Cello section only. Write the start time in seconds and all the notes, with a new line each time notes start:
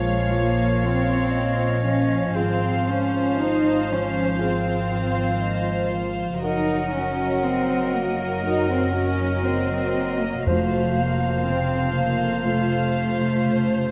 Already playing: G#3
0.31 A#3
0.81 C4
1.84 C#4
2.36 C4
2.88 C#4
3.38 D#4
3.89 C#4
4.40 C4
6.43 D#4
6.93 C#4
7.44 C4
7.95 A#3
8.46 D#4
8.70 C4
8.95 C#4
9.45 C4
10.21 A#3
10.46 A3
10.97 A#3
11.47 C4
11.96 A#3
12.45 A3